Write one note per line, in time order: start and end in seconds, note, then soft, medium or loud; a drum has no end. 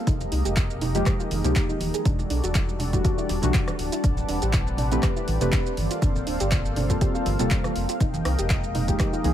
0.00 0.87 A#3 medium
0.00 0.87 C4 medium
0.00 0.81 F5 medium
0.07 0.26 F1 loud
0.07 2.03 G#3 medium
0.07 2.05 D#4 medium
0.07 0.16 D#4 loud
0.07 2.03 G4 medium
0.07 2.03 A#4 medium
0.07 2.03 D#5 medium
0.07 kick loud
0.07 closed hi-hat medium
0.07 shaker medium
0.20 closed hi-hat soft
0.20 muted conga soft
0.20 shaker soft
0.32 0.42 C2 medium
0.32 0.41 D#4 medium
0.32 closed hi-hat medium
0.32 open hi-hat loud
0.42 1.02 F1 medium
0.42 2.05 G#3 medium
0.42 0.50 G4 medium
0.42 closed hi-hat soft
0.42 shaker medium
0.56 0.66 F4 medium
0.56 kick loud
0.56 snare loud
0.56 clap loud
0.56 closed hi-hat medium
0.56 shaker medium
0.70 shaker soft
0.81 0.94 D#4 medium
0.81 closed hi-hat medium
0.81 open hi-hat medium
0.81 low conga medium
0.95 1.41 F3 medium
0.95 1.41 G#3 medium
0.95 1.41 A#3 medium
0.95 1.41 D#4 medium
0.95 1.06 F4 medium
0.95 1.41 G4 medium
0.95 2.05 G5 medium
0.95 2.05 A#5 medium
0.95 closed hi-hat soft
0.95 muted conga medium
0.95 shaker medium
1.06 1.15 G4 medium
1.06 kick loud
1.06 cross-stick medium
1.06 clap medium
1.06 closed hi-hat medium
1.06 muted conga medium
1.06 shaker medium
1.20 1.24 F4 medium
1.20 shaker soft
1.31 1.41 F1 medium
1.31 closed hi-hat medium
1.31 open hi-hat loud
1.31 high conga medium
1.44 1.53 C2 medium
1.44 2.04 F3 medium
1.44 2.04 G#3 medium
1.44 2.04 A#3 medium
1.44 2.04 D#4 medium
1.44 2.04 G4 medium
1.44 closed hi-hat soft
1.44 low conga medium
1.44 shaker medium
1.56 1.61 G4 medium
1.56 kick loud
1.56 snare loud
1.56 clap loud
1.56 closed hi-hat medium
1.56 shaker medium
1.69 1.80 D#4 medium
1.69 shaker soft
1.80 1.91 D#1 medium
1.80 closed hi-hat medium
1.80 open hi-hat loud
1.80 high conga medium
1.94 2.05 G#4 medium
1.94 closed hi-hat soft
1.94 closed hi-hat medium
1.94 shaker medium
2.05 2.24 E1 loud
2.05 4.02 G3 medium
2.05 2.14 D4 loud
2.05 4.74 D4 medium
2.05 4.02 F#4 medium
2.05 4.02 A4 medium
2.05 4.02 D5 medium
2.05 kick loud
2.05 closed hi-hat medium
2.05 shaker medium
2.17 6.67 G3 medium
2.17 muted conga medium
2.17 shaker soft
2.30 2.40 B1 medium
2.30 2.39 D4 medium
2.30 closed hi-hat medium
2.30 open hi-hat loud
2.44 3.00 E1 medium
2.44 2.48 F#4 medium
2.44 closed hi-hat soft
2.44 shaker medium
2.55 2.64 E4 medium
2.55 kick loud
2.55 snare loud
2.55 clap loud
2.55 closed hi-hat medium
2.55 shaker medium
2.69 shaker soft
2.79 2.93 D4 medium
2.79 4.74 F#5 loud
2.79 closed hi-hat medium
2.79 open hi-hat medium
2.79 low conga medium
2.93 3.39 E3 medium
2.93 3.40 G3 medium
2.93 3.40 A3 medium
2.93 3.40 D4 medium
2.93 3.04 E4 medium
2.93 3.40 F#4 medium
2.93 4.74 A5 loud
2.93 kick medium
2.93 closed hi-hat soft
2.93 muted conga soft
2.93 shaker medium
3.05 3.14 F#4 medium
3.05 kick loud
3.05 closed hi-hat medium
3.05 shaker medium
3.18 3.23 E4 medium
3.18 shaker soft
3.29 3.39 E1 medium
3.29 closed hi-hat medium
3.29 open hi-hat loud
3.29 muted conga medium
3.42 3.51 B1 medium
3.42 4.02 E3 medium
3.42 4.02 G3 medium
3.42 4.02 A3 medium
3.42 4.03 D4 medium
3.42 4.03 F#4 medium
3.42 closed hi-hat medium
3.42 closed hi-hat soft
3.42 low conga medium
3.42 shaker medium
3.54 3.63 D4 medium
3.54 kick loud
3.54 snare loud
3.54 clap loud
3.54 closed hi-hat medium
3.54 shaker medium
3.68 cross-stick medium
3.68 closed hi-hat soft
3.68 muted conga medium
3.68 shaker soft
3.79 3.89 D1 medium
3.79 closed hi-hat medium
3.79 open hi-hat medium
3.92 4.00 E4 medium
3.92 closed hi-hat medium
3.92 shaker medium
4.04 4.23 A1 loud
4.04 8.80 C4 medium
4.04 5.76 C4 medium
4.04 4.13 D4 loud
4.04 5.76 G4 medium
4.04 5.76 B4 medium
4.04 5.76 D5 medium
4.04 kick loud
4.04 closed hi-hat medium
4.04 shaker medium
4.17 6.67 D5 medium
4.17 closed hi-hat soft
4.17 muted conga soft
4.17 shaker soft
4.29 4.39 E1 medium
4.29 4.38 D4 medium
4.29 closed hi-hat medium
4.29 open hi-hat loud
4.42 4.98 A1 medium
4.42 4.47 G4 medium
4.42 closed hi-hat medium
4.42 shaker medium
4.53 4.62 E4 medium
4.53 kick loud
4.53 snare loud
4.53 clap loud
4.53 closed hi-hat medium
4.53 shaker medium
4.67 shaker soft
4.77 4.91 D4 medium
4.77 closed hi-hat medium
4.77 open hi-hat medium
4.77 low conga medium
4.91 5.38 A3 medium
4.91 5.38 C4 medium
4.91 5.38 D4 medium
4.91 5.02 E4 medium
4.91 5.38 G4 medium
4.91 5.38 B4 medium
4.91 closed hi-hat medium
4.91 muted conga medium
4.91 shaker medium
5.03 5.12 G4 medium
5.03 kick loud
5.03 cross-stick medium
5.03 clap medium
5.03 closed hi-hat medium
5.03 muted conga medium
5.03 shaker medium
5.16 5.21 E4 medium
5.16 shaker soft
5.28 5.38 A1 medium
5.28 closed hi-hat medium
5.28 open hi-hat loud
5.28 high conga medium
5.41 5.50 E1 medium
5.41 5.76 A3 medium
5.41 5.76 C4 medium
5.41 5.76 D4 medium
5.41 5.76 G4 medium
5.41 5.76 B4 medium
5.41 closed hi-hat medium
5.41 closed hi-hat soft
5.41 low conga medium
5.41 shaker medium
5.52 5.62 D4 medium
5.52 kick loud
5.52 snare loud
5.52 clap loud
5.52 closed hi-hat medium
5.52 shaker medium
5.66 shaker soft
5.77 5.87 G1 medium
5.77 7.98 A#3 medium
5.77 7.98 A4 medium
5.77 7.98 C5 medium
5.77 7.98 F5 medium
5.77 closed hi-hat medium
5.77 open hi-hat medium
5.77 high conga medium
5.91 5.98 F4 medium
5.91 closed hi-hat medium
5.91 closed hi-hat soft
5.91 shaker medium
6.02 6.21 G1 loud
6.02 6.11 D4 loud
6.02 kick loud
6.02 closed hi-hat medium
6.02 shaker medium
6.13 8.80 A#3 medium
6.13 muted conga medium
6.13 shaker soft
6.22 8.80 F5 medium
6.27 6.37 D1 medium
6.27 6.36 D4 medium
6.27 closed hi-hat medium
6.27 open hi-hat loud
6.40 6.97 G1 medium
6.40 6.45 G4 medium
6.40 closed hi-hat medium
6.40 closed hi-hat soft
6.40 shaker medium
6.51 6.61 F4 medium
6.51 kick loud
6.51 snare loud
6.51 clap loud
6.51 closed hi-hat medium
6.51 shaker medium
6.65 shaker soft
6.76 6.89 D4 medium
6.76 8.00 A5 medium
6.76 closed hi-hat medium
6.76 open hi-hat medium
6.76 low conga medium
6.89 7.36 G3 medium
6.89 7.36 A#3 medium
6.89 7.36 C4 medium
6.89 7.01 F4 medium
6.89 7.36 F4 medium
6.89 7.36 A4 medium
6.89 kick medium
6.89 closed hi-hat medium
6.89 muted conga medium
6.89 shaker medium
7.01 7.10 G4 medium
7.01 kick loud
7.01 closed hi-hat medium
7.01 shaker medium
7.15 7.19 F4 medium
7.15 shaker soft
7.26 7.36 G1 medium
7.26 closed hi-hat medium
7.26 open hi-hat loud
7.26 muted conga medium
7.39 7.48 D1 medium
7.39 7.99 G3 medium
7.39 7.99 A#3 medium
7.39 7.99 C4 medium
7.39 7.99 F4 medium
7.39 7.99 A4 medium
7.39 closed hi-hat medium
7.39 closed hi-hat soft
7.39 low conga medium
7.39 shaker medium
7.50 7.60 D4 medium
7.50 kick loud
7.50 snare loud
7.50 clap loud
7.50 closed hi-hat medium
7.50 shaker medium
7.64 cross-stick medium
7.64 closed hi-hat soft
7.64 muted conga medium
7.64 shaker soft
7.76 7.86 F1 medium
7.76 closed hi-hat medium
7.76 open hi-hat medium
7.89 7.97 F4 medium
7.89 closed hi-hat medium
7.89 shaker medium
8.00 8.20 F1 loud
8.00 9.34 G#3 medium
8.00 9.34 D#4 medium
8.00 8.09 D#4 loud
8.00 9.34 A#4 medium
8.00 9.34 D#5 medium
8.00 9.34 G5 medium
8.00 kick loud
8.00 closed hi-hat medium
8.00 shaker medium
8.14 closed hi-hat soft
8.14 muted conga medium
8.14 high conga medium
8.14 shaker soft
8.25 8.35 C2 medium
8.25 8.34 D#4 medium
8.25 cross-stick medium
8.25 closed hi-hat medium
8.25 open hi-hat loud
8.39 8.95 F1 medium
8.39 8.43 G4 medium
8.39 closed hi-hat medium
8.39 shaker medium
8.50 9.34 G#3 medium
8.50 8.59 F4 medium
8.50 kick loud
8.50 snare loud
8.50 clap loud
8.50 closed hi-hat medium
8.50 shaker medium
8.64 shaker soft
8.75 8.88 D#4 medium
8.75 closed hi-hat medium
8.75 open hi-hat medium
8.75 low conga medium
8.88 9.22 F3 medium
8.88 9.22 G#3 medium
8.88 9.22 A#3 medium
8.88 9.22 D#4 medium
8.88 8.99 F4 medium
8.88 9.22 G4 medium
8.88 9.34 G5 medium
8.88 9.34 A#5 medium
8.88 kick medium
8.88 closed hi-hat medium
8.88 muted conga medium
8.88 shaker medium
8.99 9.09 G4 medium
8.99 kick loud
8.99 cross-stick medium
8.99 clap medium
8.99 closed hi-hat medium
8.99 muted conga medium
8.99 shaker medium
9.13 9.18 F4 medium
9.13 shaker soft
9.24 9.34 C2 loud
9.24 9.34 F3 medium
9.24 9.34 G#3 medium
9.24 9.34 A#3 medium
9.24 9.34 D#4 medium
9.24 9.34 G#4 medium
9.24 closed hi-hat medium
9.24 open hi-hat loud
9.24 high conga medium